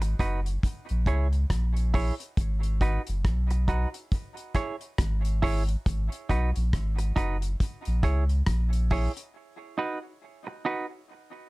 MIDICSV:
0, 0, Header, 1, 5, 480
1, 0, Start_track
1, 0, Key_signature, 5, "minor"
1, 0, Tempo, 870954
1, 1308, Time_signature, 4, 2, 24, 8
1, 6333, End_track
2, 0, Start_track
2, 0, Title_t, "Clean electric guitar"
2, 0, Program_c, 0, 27
2, 108, Note_on_c, 0, 63, 77
2, 110, Note_on_c, 0, 66, 73
2, 112, Note_on_c, 0, 71, 86
2, 216, Note_off_c, 0, 63, 0
2, 218, Note_off_c, 0, 66, 0
2, 218, Note_off_c, 0, 71, 0
2, 590, Note_on_c, 0, 64, 77
2, 591, Note_on_c, 0, 68, 80
2, 595, Note_on_c, 0, 73, 88
2, 698, Note_off_c, 0, 64, 0
2, 698, Note_off_c, 0, 68, 0
2, 700, Note_off_c, 0, 73, 0
2, 1068, Note_on_c, 0, 64, 78
2, 1072, Note_on_c, 0, 68, 78
2, 1074, Note_on_c, 0, 73, 88
2, 1177, Note_off_c, 0, 64, 0
2, 1179, Note_off_c, 0, 68, 0
2, 1180, Note_off_c, 0, 73, 0
2, 1549, Note_on_c, 0, 63, 69
2, 1551, Note_on_c, 0, 66, 87
2, 1555, Note_on_c, 0, 71, 85
2, 1658, Note_off_c, 0, 63, 0
2, 1658, Note_off_c, 0, 66, 0
2, 1660, Note_off_c, 0, 71, 0
2, 2027, Note_on_c, 0, 63, 75
2, 2031, Note_on_c, 0, 66, 86
2, 2036, Note_on_c, 0, 71, 79
2, 2137, Note_off_c, 0, 63, 0
2, 2138, Note_off_c, 0, 66, 0
2, 2141, Note_off_c, 0, 71, 0
2, 2506, Note_on_c, 0, 64, 77
2, 2509, Note_on_c, 0, 68, 80
2, 2512, Note_on_c, 0, 73, 93
2, 2616, Note_off_c, 0, 64, 0
2, 2618, Note_off_c, 0, 68, 0
2, 2619, Note_off_c, 0, 73, 0
2, 2989, Note_on_c, 0, 64, 89
2, 2993, Note_on_c, 0, 68, 90
2, 2996, Note_on_c, 0, 73, 90
2, 3098, Note_off_c, 0, 64, 0
2, 3100, Note_off_c, 0, 68, 0
2, 3101, Note_off_c, 0, 73, 0
2, 3468, Note_on_c, 0, 63, 82
2, 3473, Note_on_c, 0, 66, 94
2, 3476, Note_on_c, 0, 71, 92
2, 3578, Note_off_c, 0, 63, 0
2, 3580, Note_off_c, 0, 66, 0
2, 3581, Note_off_c, 0, 71, 0
2, 3945, Note_on_c, 0, 63, 89
2, 3949, Note_on_c, 0, 66, 92
2, 3953, Note_on_c, 0, 71, 84
2, 4056, Note_off_c, 0, 63, 0
2, 4058, Note_off_c, 0, 66, 0
2, 4060, Note_off_c, 0, 71, 0
2, 4426, Note_on_c, 0, 64, 75
2, 4429, Note_on_c, 0, 68, 80
2, 4433, Note_on_c, 0, 73, 72
2, 4537, Note_off_c, 0, 64, 0
2, 4538, Note_off_c, 0, 68, 0
2, 4540, Note_off_c, 0, 73, 0
2, 4910, Note_on_c, 0, 64, 79
2, 4913, Note_on_c, 0, 68, 87
2, 4918, Note_on_c, 0, 73, 86
2, 5019, Note_off_c, 0, 64, 0
2, 5020, Note_off_c, 0, 68, 0
2, 5023, Note_off_c, 0, 73, 0
2, 5388, Note_on_c, 0, 63, 75
2, 5393, Note_on_c, 0, 66, 86
2, 5394, Note_on_c, 0, 71, 80
2, 5498, Note_off_c, 0, 63, 0
2, 5500, Note_off_c, 0, 66, 0
2, 5501, Note_off_c, 0, 71, 0
2, 5869, Note_on_c, 0, 63, 71
2, 5873, Note_on_c, 0, 66, 80
2, 5876, Note_on_c, 0, 71, 84
2, 5979, Note_off_c, 0, 63, 0
2, 5981, Note_off_c, 0, 66, 0
2, 5982, Note_off_c, 0, 71, 0
2, 6333, End_track
3, 0, Start_track
3, 0, Title_t, "Sub bass"
3, 0, Program_c, 1, 38
3, 0, Note_on_c, 1, 32, 101
3, 80, Note_off_c, 1, 32, 0
3, 110, Note_on_c, 1, 30, 89
3, 320, Note_off_c, 1, 30, 0
3, 498, Note_on_c, 1, 34, 92
3, 581, Note_off_c, 1, 34, 0
3, 590, Note_on_c, 1, 37, 84
3, 800, Note_off_c, 1, 37, 0
3, 831, Note_on_c, 1, 34, 88
3, 1164, Note_off_c, 1, 34, 0
3, 1312, Note_on_c, 1, 32, 94
3, 1645, Note_off_c, 1, 32, 0
3, 1701, Note_on_c, 1, 30, 91
3, 1794, Note_on_c, 1, 35, 91
3, 1802, Note_off_c, 1, 30, 0
3, 2126, Note_off_c, 1, 35, 0
3, 2752, Note_on_c, 1, 32, 103
3, 3173, Note_off_c, 1, 32, 0
3, 3234, Note_on_c, 1, 32, 84
3, 3355, Note_off_c, 1, 32, 0
3, 3474, Note_on_c, 1, 35, 78
3, 3596, Note_off_c, 1, 35, 0
3, 3617, Note_on_c, 1, 34, 87
3, 3701, Note_off_c, 1, 34, 0
3, 3714, Note_on_c, 1, 32, 83
3, 3923, Note_off_c, 1, 32, 0
3, 3952, Note_on_c, 1, 30, 81
3, 4162, Note_off_c, 1, 30, 0
3, 4338, Note_on_c, 1, 34, 96
3, 4422, Note_off_c, 1, 34, 0
3, 4431, Note_on_c, 1, 37, 94
3, 4641, Note_off_c, 1, 37, 0
3, 4671, Note_on_c, 1, 34, 99
3, 5006, Note_off_c, 1, 34, 0
3, 6333, End_track
4, 0, Start_track
4, 0, Title_t, "Muted clean electric guitar strokes"
4, 9, Note_on_c, 9, 29, 48
4, 64, Note_off_c, 9, 29, 0
4, 1933, Note_on_c, 9, 29, 37
4, 1988, Note_off_c, 9, 29, 0
4, 3850, Note_on_c, 9, 29, 36
4, 3905, Note_off_c, 9, 29, 0
4, 5769, Note_on_c, 9, 29, 46
4, 5825, Note_off_c, 9, 29, 0
4, 6333, End_track
5, 0, Start_track
5, 0, Title_t, "Drums"
5, 9, Note_on_c, 9, 42, 61
5, 64, Note_off_c, 9, 42, 0
5, 107, Note_on_c, 9, 36, 92
5, 111, Note_on_c, 9, 42, 67
5, 162, Note_off_c, 9, 36, 0
5, 166, Note_off_c, 9, 42, 0
5, 254, Note_on_c, 9, 42, 53
5, 309, Note_off_c, 9, 42, 0
5, 349, Note_on_c, 9, 36, 101
5, 353, Note_on_c, 9, 42, 85
5, 404, Note_off_c, 9, 36, 0
5, 408, Note_off_c, 9, 42, 0
5, 490, Note_on_c, 9, 42, 43
5, 545, Note_off_c, 9, 42, 0
5, 585, Note_on_c, 9, 36, 83
5, 588, Note_on_c, 9, 42, 64
5, 641, Note_off_c, 9, 36, 0
5, 644, Note_off_c, 9, 42, 0
5, 731, Note_on_c, 9, 42, 38
5, 786, Note_off_c, 9, 42, 0
5, 827, Note_on_c, 9, 36, 98
5, 828, Note_on_c, 9, 37, 101
5, 830, Note_on_c, 9, 42, 97
5, 882, Note_off_c, 9, 36, 0
5, 883, Note_off_c, 9, 37, 0
5, 885, Note_off_c, 9, 42, 0
5, 972, Note_on_c, 9, 42, 51
5, 1028, Note_off_c, 9, 42, 0
5, 1069, Note_on_c, 9, 46, 68
5, 1070, Note_on_c, 9, 36, 88
5, 1124, Note_off_c, 9, 46, 0
5, 1125, Note_off_c, 9, 36, 0
5, 1213, Note_on_c, 9, 42, 60
5, 1268, Note_off_c, 9, 42, 0
5, 1308, Note_on_c, 9, 36, 117
5, 1309, Note_on_c, 9, 42, 90
5, 1363, Note_off_c, 9, 36, 0
5, 1364, Note_off_c, 9, 42, 0
5, 1450, Note_on_c, 9, 42, 50
5, 1505, Note_off_c, 9, 42, 0
5, 1548, Note_on_c, 9, 36, 84
5, 1549, Note_on_c, 9, 42, 60
5, 1603, Note_off_c, 9, 36, 0
5, 1604, Note_off_c, 9, 42, 0
5, 1690, Note_on_c, 9, 42, 57
5, 1745, Note_off_c, 9, 42, 0
5, 1789, Note_on_c, 9, 36, 111
5, 1790, Note_on_c, 9, 37, 89
5, 1790, Note_on_c, 9, 42, 80
5, 1844, Note_off_c, 9, 36, 0
5, 1845, Note_off_c, 9, 37, 0
5, 1846, Note_off_c, 9, 42, 0
5, 1931, Note_on_c, 9, 42, 58
5, 1986, Note_off_c, 9, 42, 0
5, 2028, Note_on_c, 9, 36, 93
5, 2030, Note_on_c, 9, 42, 65
5, 2083, Note_off_c, 9, 36, 0
5, 2085, Note_off_c, 9, 42, 0
5, 2172, Note_on_c, 9, 42, 58
5, 2227, Note_off_c, 9, 42, 0
5, 2270, Note_on_c, 9, 36, 112
5, 2271, Note_on_c, 9, 42, 77
5, 2325, Note_off_c, 9, 36, 0
5, 2326, Note_off_c, 9, 42, 0
5, 2408, Note_on_c, 9, 42, 46
5, 2463, Note_off_c, 9, 42, 0
5, 2505, Note_on_c, 9, 36, 85
5, 2505, Note_on_c, 9, 42, 66
5, 2506, Note_on_c, 9, 37, 62
5, 2560, Note_off_c, 9, 42, 0
5, 2561, Note_off_c, 9, 36, 0
5, 2561, Note_off_c, 9, 37, 0
5, 2650, Note_on_c, 9, 42, 46
5, 2705, Note_off_c, 9, 42, 0
5, 2747, Note_on_c, 9, 37, 114
5, 2748, Note_on_c, 9, 36, 109
5, 2748, Note_on_c, 9, 42, 90
5, 2802, Note_off_c, 9, 37, 0
5, 2803, Note_off_c, 9, 36, 0
5, 2804, Note_off_c, 9, 42, 0
5, 2892, Note_on_c, 9, 42, 55
5, 2947, Note_off_c, 9, 42, 0
5, 2991, Note_on_c, 9, 36, 84
5, 2991, Note_on_c, 9, 46, 81
5, 3046, Note_off_c, 9, 36, 0
5, 3046, Note_off_c, 9, 46, 0
5, 3133, Note_on_c, 9, 42, 64
5, 3189, Note_off_c, 9, 42, 0
5, 3230, Note_on_c, 9, 36, 119
5, 3232, Note_on_c, 9, 42, 86
5, 3285, Note_off_c, 9, 36, 0
5, 3287, Note_off_c, 9, 42, 0
5, 3374, Note_on_c, 9, 42, 54
5, 3429, Note_off_c, 9, 42, 0
5, 3470, Note_on_c, 9, 36, 84
5, 3473, Note_on_c, 9, 42, 70
5, 3525, Note_off_c, 9, 36, 0
5, 3528, Note_off_c, 9, 42, 0
5, 3613, Note_on_c, 9, 42, 53
5, 3668, Note_off_c, 9, 42, 0
5, 3710, Note_on_c, 9, 36, 102
5, 3710, Note_on_c, 9, 37, 83
5, 3711, Note_on_c, 9, 42, 67
5, 3765, Note_off_c, 9, 36, 0
5, 3766, Note_off_c, 9, 37, 0
5, 3766, Note_off_c, 9, 42, 0
5, 3849, Note_on_c, 9, 42, 59
5, 3904, Note_off_c, 9, 42, 0
5, 3949, Note_on_c, 9, 36, 92
5, 3950, Note_on_c, 9, 42, 79
5, 4004, Note_off_c, 9, 36, 0
5, 4005, Note_off_c, 9, 42, 0
5, 4090, Note_on_c, 9, 42, 56
5, 4145, Note_off_c, 9, 42, 0
5, 4190, Note_on_c, 9, 36, 97
5, 4190, Note_on_c, 9, 42, 83
5, 4245, Note_off_c, 9, 36, 0
5, 4245, Note_off_c, 9, 42, 0
5, 4328, Note_on_c, 9, 42, 49
5, 4383, Note_off_c, 9, 42, 0
5, 4426, Note_on_c, 9, 42, 61
5, 4427, Note_on_c, 9, 36, 96
5, 4428, Note_on_c, 9, 37, 60
5, 4481, Note_off_c, 9, 42, 0
5, 4482, Note_off_c, 9, 36, 0
5, 4483, Note_off_c, 9, 37, 0
5, 4571, Note_on_c, 9, 42, 39
5, 4626, Note_off_c, 9, 42, 0
5, 4665, Note_on_c, 9, 37, 108
5, 4667, Note_on_c, 9, 42, 90
5, 4668, Note_on_c, 9, 36, 97
5, 4720, Note_off_c, 9, 37, 0
5, 4722, Note_off_c, 9, 42, 0
5, 4723, Note_off_c, 9, 36, 0
5, 4811, Note_on_c, 9, 42, 51
5, 4866, Note_off_c, 9, 42, 0
5, 4908, Note_on_c, 9, 46, 72
5, 4911, Note_on_c, 9, 36, 87
5, 4963, Note_off_c, 9, 46, 0
5, 4966, Note_off_c, 9, 36, 0
5, 5052, Note_on_c, 9, 42, 57
5, 5107, Note_off_c, 9, 42, 0
5, 6333, End_track
0, 0, End_of_file